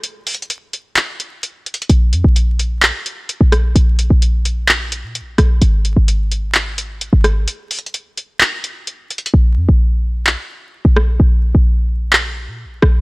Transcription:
0.04 closed hi-hat
0.27 closed hi-hat, open hi-hat
0.35 closed hi-hat
0.42 closed hi-hat
0.50 closed hi-hat
0.73 closed hi-hat
0.97 clap, closed hi-hat
1.20 closed hi-hat
1.43 closed hi-hat
1.66 closed hi-hat
1.74 closed hi-hat
1.82 closed hi-hat
1.90 808-style bass A#1, closed hi-hat
2.13 808-style bass F2, closed hi-hat
2.24 808-style bass A#1
2.36 closed hi-hat
2.59 closed hi-hat
2.82 clap, closed hi-hat
3.06 closed hi-hat
3.29 closed hi-hat
3.41 808-style bass A#1
3.52 cross-stick, closed hi-hat
3.76 808-style bass A#1, closed hi-hat
3.99 closed hi-hat
4.10 808-style bass A#1
4.22 closed hi-hat
4.45 closed hi-hat
4.69 clap, closed hi-hat
4.92 closed hi-hat
5.03 808-style bass A#2
5.15 closed hi-hat
5.21 808-style bass A#1
5.38 808-style bass A#1, cross-stick, closed hi-hat
5.62 808-style bass G#1, closed hi-hat
5.85 closed hi-hat
5.97 808-style bass G#1
6.08 closed hi-hat
6.31 closed hi-hat
6.55 clap, closed hi-hat
6.78 closed hi-hat
7.01 closed hi-hat
7.13 808-style bass G#1
7.24 cross-stick, closed hi-hat
7.48 closed hi-hat
7.71 closed hi-hat, open hi-hat
7.79 closed hi-hat
7.86 closed hi-hat
7.94 closed hi-hat
8.17 closed hi-hat
8.41 clap, closed hi-hat
8.64 closed hi-hat
8.87 closed hi-hat
9.11 closed hi-hat
9.18 closed hi-hat
9.26 closed hi-hat
9.34 808-style bass A#1
9.57 808-style bass F2
9.69 808-style bass A#1
10.27 clap
10.85 808-style bass A#1
10.96 cross-stick
11.20 808-style bass A#1
11.55 808-style bass A#1
12.13 clap
12.48 808-style bass A#2
12.65 808-style bass A#1
12.82 808-style bass A#1, cross-stick

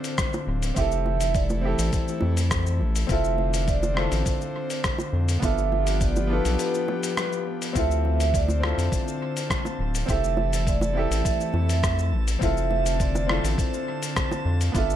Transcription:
Already playing: analog synth pad D3 C4, grand piano C4 E4 F4 A4, vibraphone C5
0.04 open hi-hat, shaker
0.18 kick, cross-stick, open hi-hat, shaker
0.33 high bongo, shaker
0.47 analog synth bass D1
0.62 open hi-hat, shaker
0.74 analog synth bass F1, analog synth pad E3 A3, grand piano C4 E4 G4, vibraphone E5, kick, open hi-hat, shaker
0.80 grand piano A4
0.92 shaker
1.06 high bongo
1.21 open hi-hat, shaker
1.34 vibraphone D5, kick, open hi-hat, shaker
1.50 high bongo, shaker
1.61 grand piano C4 E4 G4, vibraphone C5
1.67 grand piano A4
1.79 analog synth bass A1, open hi-hat, shaker
1.93 kick, open hi-hat, shaker
2.08 shaker
2.21 analog synth bass F2, high bongo
2.37 open hi-hat, shaker
2.51 kick, cross-stick, open hi-hat, shaker
2.66 shaker
2.80 analog synth bass A1
2.96 open hi-hat, shaker
3.07 analog synth bass F1, analog synth pad D3 C4, grand piano C4 E4, kick, open hi-hat, shaker
3.11 grand piano F4 A4, vibraphone E5
3.24 shaker
3.38 high bongo
3.54 open hi-hat, shaker
3.68 vibraphone D5, kick, open hi-hat, shaker
3.83 high bongo, shaker
3.94 grand piano C4 E4, vibraphone C5, cross-stick
3.98 grand piano F4 A4
4.12 analog synth bass A1, open hi-hat, shaker
4.26 kick, open hi-hat, shaker
4.41 shaker
4.70 open hi-hat, shaker
4.84 kick, cross-stick, open hi-hat, shaker
4.98 high bongo, shaker
5.13 analog synth bass F2
5.29 open hi-hat, shaker
5.40 analog synth bass G1, analog synth pad F3 B3 G4, grand piano B3 D4, vibraphone E5, kick, open hi-hat, shaker
5.44 grand piano F4 A4
5.58 shaker
5.72 high bongo
5.87 open hi-hat, shaker
6.01 vibraphone D5, kick, open hi-hat, shaker
6.16 high bongo, shaker
6.27 grand piano B3 D4 F4, vibraphone B4
6.33 grand piano A4
6.45 analog synth bass B1, open hi-hat, shaker
6.59 open hi-hat, shaker
6.74 shaker
6.88 high bongo
7.03 open hi-hat, shaker
7.17 cross-stick, open hi-hat, shaker
7.33 shaker
7.62 open hi-hat, shaker
7.73 analog synth bass D2, analog synth pad D3, grand piano C4 E4, synth texture A5, kick, open hi-hat, shaker
7.77 analog synth pad C4, grand piano F4 A4, vibraphone E5
7.91 shaker
8.05 high bongo
8.20 open hi-hat, shaker
8.34 vibraphone D5, kick, open hi-hat, shaker
8.48 high bongo, shaker
8.60 grand piano C4 E4 F4, cross-stick
8.65 grand piano A4, vibraphone C5
8.78 analog synth bass F2, open hi-hat, shaker
8.92 kick, open hi-hat, shaker
9.08 shaker
9.37 open hi-hat, shaker
9.50 kick, cross-stick, open hi-hat, shaker
9.65 high bongo, shaker
9.79 analog synth bass D1
9.95 open hi-hat, shaker
10.06 analog synth bass F1, analog synth pad E3 A3, grand piano C4 E4 G4, vibraphone E5, kick, open hi-hat, shaker
10.12 grand piano A4
10.24 shaker
10.37 high bongo
10.53 open hi-hat, shaker
10.67 vibraphone D5, kick, open hi-hat, shaker
10.81 high bongo, shaker
10.93 grand piano C4 E4, vibraphone E5
10.97 grand piano G4 A4
11.10 analog synth bass A1, open hi-hat, shaker
11.25 kick, open hi-hat, shaker
11.41 shaker
11.54 analog synth bass F2, high bongo
11.69 open hi-hat, shaker
11.83 kick, cross-stick, open hi-hat, shaker
11.99 shaker
12.12 analog synth bass A1
12.28 open hi-hat, shaker
12.39 analog synth bass F1, analog synth pad D3 C4, grand piano C4 E4 F4, vibraphone E5, kick, open hi-hat, shaker
12.45 grand piano A4
12.57 shaker
12.71 high bongo
12.86 open hi-hat, shaker
13.00 vibraphone D5, kick, open hi-hat, shaker
13.15 high bongo, shaker
13.27 grand piano C4 E4 F4, vibraphone C5, cross-stick
13.32 grand piano A4
13.44 analog synth bass A1, open hi-hat, shaker
13.58 kick, open hi-hat, shaker
13.74 shaker
14.03 open hi-hat, shaker
14.16 kick, cross-stick, open hi-hat, shaker
14.31 high bongo, shaker
14.45 analog synth bass F2
14.61 open hi-hat, shaker
14.72 analog synth bass G1, analog synth pad F3 B3 G4, grand piano B3 D4 F4, vibraphone E5, kick, open hi-hat, shaker
14.78 grand piano A4
14.90 shaker

